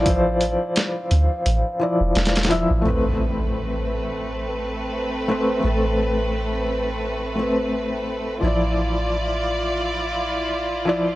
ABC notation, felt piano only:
X:1
M:4/4
L:1/8
Q:"Swing 16ths" 1/4=86
K:Am
V:1 name="Felt piano"
[F,Ec]4- [F,Ec] [F,Ed]2 [F,Ee] | [A,CB]6- [A,CB] [A,CB] | [A,CA]4- [A,CA] [A,CB]3 | [F,Ed]6- [F,Ed] [F,Ed] |]